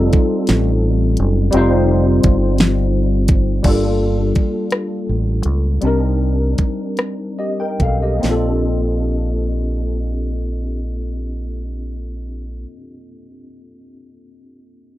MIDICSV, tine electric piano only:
0, 0, Header, 1, 2, 480
1, 0, Start_track
1, 0, Key_signature, -2, "major"
1, 0, Tempo, 702576
1, 1048, Time_signature, 6, 3, 24, 8
1, 2969, Tempo, 729040
1, 3929, Tempo, 768246
1, 4409, Tempo, 827586
1, 5369, Tempo, 877193
1, 9065, End_track
2, 0, Start_track
2, 0, Title_t, "Tine electric piano"
2, 0, Program_c, 0, 4
2, 0, Control_c, 0, 64, 127
2, 0, Note_on_c, 0, 55, 77
2, 0, Note_on_c, 0, 60, 73
2, 0, Note_on_c, 0, 63, 76
2, 0, Note_on_c, 0, 65, 75
2, 0, Note_on_c, 0, 69, 87
2, 1016, Note_off_c, 0, 55, 0
2, 1020, Note_off_c, 0, 60, 0
2, 1027, Note_off_c, 0, 63, 0
2, 1029, Note_on_c, 0, 55, 83
2, 1031, Note_off_c, 0, 65, 0
2, 1036, Note_off_c, 0, 69, 0
2, 1046, Note_on_c, 0, 60, 74
2, 1054, Note_on_c, 0, 63, 71
2, 1062, Note_on_c, 0, 65, 71
2, 1071, Note_on_c, 0, 72, 85
2, 2450, Note_off_c, 0, 55, 0
2, 2458, Note_off_c, 0, 60, 0
2, 2462, Note_off_c, 0, 63, 0
2, 2466, Note_off_c, 0, 65, 0
2, 2471, Note_off_c, 0, 72, 0
2, 2476, Note_on_c, 0, 55, 65
2, 2486, Note_on_c, 0, 58, 61
2, 2495, Note_on_c, 0, 62, 61
2, 2496, Control_c, 0, 64, 0
2, 2505, Note_on_c, 0, 65, 58
2, 2516, Note_on_c, 0, 69, 74
2, 2623, Control_c, 0, 64, 127
2, 3898, Note_off_c, 0, 55, 0
2, 3903, Note_off_c, 0, 58, 0
2, 3907, Note_off_c, 0, 62, 0
2, 3912, Note_off_c, 0, 65, 0
2, 3918, Note_off_c, 0, 69, 0
2, 3932, Note_on_c, 0, 55, 61
2, 3937, Control_c, 0, 64, 0
2, 3939, Note_on_c, 0, 60, 61
2, 3950, Note_on_c, 0, 62, 61
2, 3958, Note_on_c, 0, 63, 58
2, 3968, Note_on_c, 0, 70, 71
2, 4046, Control_c, 0, 64, 127
2, 4876, Note_off_c, 0, 70, 0
2, 4882, Note_on_c, 0, 75, 54
2, 4886, Note_on_c, 0, 67, 45
2, 4994, Note_off_c, 0, 75, 0
2, 4996, Note_off_c, 0, 67, 0
2, 5005, Note_on_c, 0, 79, 53
2, 5011, Note_on_c, 0, 70, 48
2, 5117, Note_off_c, 0, 79, 0
2, 5120, Note_off_c, 0, 70, 0
2, 5132, Note_on_c, 0, 77, 57
2, 5135, Note_on_c, 0, 69, 47
2, 5244, Note_off_c, 0, 77, 0
2, 5246, Note_off_c, 0, 69, 0
2, 5251, Note_on_c, 0, 75, 50
2, 5254, Note_on_c, 0, 67, 41
2, 5347, Note_off_c, 0, 55, 0
2, 5348, Note_on_c, 0, 58, 64
2, 5351, Note_off_c, 0, 60, 0
2, 5356, Note_off_c, 0, 62, 0
2, 5360, Note_off_c, 0, 63, 0
2, 5362, Note_on_c, 0, 60, 57
2, 5377, Control_c, 0, 64, 0
2, 5381, Note_on_c, 0, 62, 54
2, 5398, Note_on_c, 0, 65, 59
2, 5412, Note_on_c, 0, 69, 67
2, 5470, Control_c, 0, 64, 127
2, 5482, Note_off_c, 0, 75, 0
2, 5483, Note_off_c, 0, 67, 0
2, 7761, Note_off_c, 0, 58, 0
2, 7774, Note_off_c, 0, 60, 0
2, 7793, Note_off_c, 0, 62, 0
2, 7810, Note_off_c, 0, 65, 0
2, 7824, Note_off_c, 0, 69, 0
2, 9065, End_track
0, 0, End_of_file